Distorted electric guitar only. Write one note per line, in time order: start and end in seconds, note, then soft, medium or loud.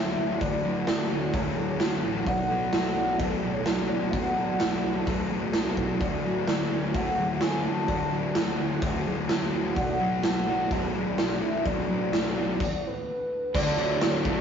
0.00 0.41 D3 medium
0.00 0.65 F#3 medium
0.00 0.18 A3 medium
0.00 1.11 C#4 medium
0.18 1.34 A3 medium
0.42 1.11 D3 medium
0.65 0.89 F#3 medium
0.89 1.57 F#3 medium
1.12 2.27 D3 medium
1.35 2.04 A3 medium
1.58 2.50 F#3 medium
1.81 2.27 C#4 medium
2.05 2.30 A3 medium
2.27 2.96 B2 medium
2.51 2.74 F#3 medium
2.74 3.43 F#3 medium
2.97 4.13 B2 medium
3.21 3.90 A3 medium
3.43 4.37 F#3 medium
3.67 5.54 D4 medium
3.91 5.07 A3 medium
4.14 4.82 B2 medium
4.38 4.60 F#3 medium
4.60 5.31 F#3 medium
4.83 6.01 B2 medium
5.08 5.78 A3 medium
5.31 6.25 F#3 medium
5.55 7.42 D4 medium
5.78 6.95 A3 medium
6.01 6.71 D3 medium
6.25 6.48 F#3 medium
6.49 7.19 F#3 medium
6.73 7.88 D3 medium
6.95 7.65 A3 medium
7.19 8.13 F#3 medium
7.42 8.60 C#4 medium
7.66 8.82 A3 medium
7.90 8.58 D3 medium
8.13 8.36 F#3 medium
8.36 9.06 F#3 medium
8.59 9.77 D3 medium
8.83 9.53 A3 medium
9.06 10.00 F#3 medium
9.29 9.77 C#4 medium
9.53 9.80 A3 medium
9.77 10.47 B2 medium
10.01 10.23 F#3 medium
10.24 10.94 F#3 medium
10.49 11.64 B2 medium
10.72 11.41 A3 medium
10.96 11.88 F#3 medium
11.19 12.37 D4 medium
11.42 12.60 A3 medium
11.66 12.36 B2 medium
11.89 12.12 F#3 medium
12.13 12.60 F#3 medium
12.37 12.60 B2 medium
13.55 13.77 D3 medium
13.79 14.41 D3 medium
14.02 14.41 F#3 medium
14.25 14.41 A3 medium